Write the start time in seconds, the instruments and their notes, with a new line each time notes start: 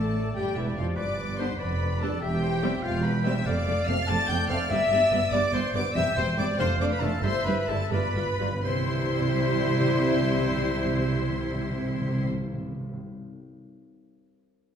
Already playing: double bass section A1, cello section A2, viola section A3, french horn section A3, flute section A4, violin section A4 A5, clarinet A4, oboe D5
0.34 double bass section G1, cello section G2, french horn section G3, viola section G3, flute section G4, clarinet G4, violin section G4 G5
0.55 double bass section E1, cello section E2, french horn section E3, viola section E3, flute section E4, violin section E4 E5, clarinet E4
0.75 double bass section F1, cello section F2, french horn section F3, viola section F3, violin section F4 F5, flute section F4, clarinet F4
0.96 double bass section G1, cello section G2, oboe B4, violin section D5 D6, flute section D5, clarinet D5
1.38 french horn section B3 D4, viola section B3 D4, flute section C5, clarinet C5, violin section C5 C6
1.58 double bass section F1, cello section F2, violin section B4 B5, clarinet B4, flute section B4, oboe D5
2.01 viola section G3 D4, french horn section G3 D4, violin section A4 A5, flute section A4, clarinet A4
2.21 double bass section E1, cello section E2, flute section G4, violin section G4 G5, clarinet G4, oboe E5
2.42 oboe C5
2.62 viola section G3 C4, french horn section G3 C4, oboe E5
2.83 double bass section E1, cello section E2, violin section F4 F5, flute section F4, clarinet F4, oboe G5
3.04 clarinet B4, flute section B4, violin section B4 B5
3.24 french horn section G3 C4, viola section G3 C4, flute section E5, violin section E5 E6, clarinet E5
3.45 double bass section F1, cello section F2, viola section A3 C4, flute section D5, violin section D5 D6, clarinet D5, oboe F5
3.67 double bass section F1, cello section F2, viola section A3 C4
3.86 double bass section F1, cello section F2, french horn section A3 C4, viola section A3 C4, flute section F5, violin section F5 F6, clarinet F5
4.06 double bass section F1, cello section F2, oboe D5, flute section A5, violin section A5 A6, clarinet A5
4.10 viola section A3 C4
4.28 double bass section F1, cello section F2, viola section A3 C4, flute section G5, violin section G5 G6, clarinet G5
4.48 double bass section F1, cello section F2, french horn section A3 C4, viola section A3 C4, flute section F5, violin section F5 F6, clarinet F5
4.69 double bass section G1, cello section G2, timpani G2, viola section G3 B3, violin section E5 E6, flute section E5, clarinet E5
4.90 double bass section G1, cello section G2, viola section G3 B3
5.10 double bass section G1, cello section G2, french horn section G3 B3, viola section G3 B3
5.31 double bass section G1, cello section G2, viola section G3 B3, violin section D5 D6, flute section D5, oboe D5, clarinet D5
5.52 double bass section G1, cello section G2, viola section G3 B3, flute section C5, clarinet C5, violin section C5 C6
5.73 double bass section G1, cello section G2, french horn section G3 B3, viola section G3 B3, violin section D5 D6, clarinet D5, flute section D5
5.94 double bass section E1, cello section E2, viola section G3 C4, violin section E5 E6, clarinet E5, flute section E5, oboe G5
6.16 double bass section E1, cello section E2, viola section G3 C4, flute section C5, violin section C5 C6, clarinet C5
6.36 double bass section E1, cello section E2, french horn section G3 C4, viola section G3 C4, flute section D5, clarinet D5, violin section D5 D6
6.58 double bass section F1, cello section F2, viola section A3 D4, violin section C5 C6, clarinet C5, flute section C5, oboe F5
6.80 double bass section F1, cello section F2, viola section A3 D4, flute section D5, clarinet D5, violin section D5 D6
6.91 violin section B4 B5, clarinet B4, flute section B4
7.01 double bass section F1, cello section F2, french horn section A3 D4, viola section A3 D4, violin section A4 A5, clarinet A4, flute section A4
7.22 double bass section G1, cello section G2, viola section G3 E4, violin section C5 C6, clarinet C5, flute section C5, oboe E5
7.45 double bass section G1, cello section G2, viola section G3 E4, clarinet B4, violin section B4 B5, flute section B4
7.68 double bass section G1, cello section G2, french horn section G3 E4, viola section G3 E4, clarinet A4, violin section A4 A5, flute section A4
7.91 double bass section G1, timpani G2, cello section G2, viola section G3 F4, clarinet B4, violin section B4 B5, flute section B4, oboe D5
7.99 timpani G2
8.08 timpani G2
8.14 double bass section G1, cello section G2, timpani G2, viola section G3 F4
8.25 timpani G2
8.33 timpani G2
8.38 double bass section G1, cello section G2, timpani G2, french horn section G3 F4, viola section G3 F4
8.51 timpani G2
8.62 double bass section C2, cello section C3, timpani C3, french horn section G3 E4, viola section G3 E4, oboe E4, violin section C5 C6, clarinet C5, flute section C5
8.70 timpani C3
8.77 timpani C3
8.83 timpani C3
8.90 timpani C3
8.95 timpani C3
9.03 timpani C3
9.09 timpani C3
9.16 timpani C3
9.21 timpani C3
9.28 timpani C3
9.34 timpani C3
9.41 timpani C3
9.48 timpani C3
9.54 timpani C3
9.61 timpani C3
9.67 timpani C3
9.74 timpani C3
9.81 timpani C3
9.87 timpani C3
9.93 timpani C3
9.99 timpani C3
10.06 timpani C3
10.12 timpani C3
10.19 timpani C3
10.26 timpani C3
10.39 timpani C3
10.45 timpani C3
10.51 timpani C3
10.58 timpani C3
10.64 timpani C3
10.71 timpani C3
10.78 timpani C3
10.85 timpani C3
10.92 timpani C3
10.99 timpani C3
11.05 timpani C3
11.11 timpani C3
11.18 timpani C3
11.24 timpani C3
11.30 timpani C3
11.36 timpani C3
11.42 timpani C3
11.49 timpani C3
11.55 timpani C3
11.62 timpani C3
11.69 timpani C3
11.75 timpani C3
11.82 timpani C3
11.89 timpani C3
11.95 timpani C3
12.01 timpani C3
12.08 timpani C3
12.14 timpani C3
12.21 timpani C3
12.27 timpani C3
12.34 timpani C3
12.41 timpani C3
12.47 timpani C3
12.54 timpani C3
12.60 timpani C3
12.66 timpani C3
12.73 timpani C3
12.80 timpani C3
12.87 timpani C3
12.94 timpani C3